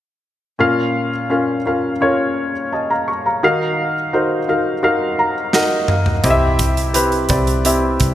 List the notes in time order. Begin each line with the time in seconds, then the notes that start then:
0.59 A#2 C#4 F4 A#4 F5
1.30 C#4 F4 A#4 F5
1.66 C#4 F4 A#4 F5
2.01 C#4 F4 A#4 C#5
2.72 D#5 A5
2.90 F5 A#5
3.08 C#6
3.26 F5 A#5
3.43 D#3 D#4 F#4 A#4 F5
4.13 D#4 F#4 A#4 C5
4.48 D#4 F#4 A#4 F5
4.83 D#4 F#4 A#4 F5
5.19 A#5
5.53 D#4 F#4 A#4 D#5 F#5, snare
5.88 F5, mid tom
6.06 floor tom
6.23 C2 C3 C4 E4 G4 D#5, kick, closed hi-hat
6.30 E5
6.59 kick, closed hi-hat
6.77 closed hi-hat
6.94 C4 E4 G4 B4, closed hi-hat
7.12 closed hi-hat
7.29 C2 C4 E4 G4 D5, kick, closed hi-hat
7.47 closed hi-hat
7.65 C4 E4 G4 E5, closed hi-hat
8.00 C2, kick, closed hi-hat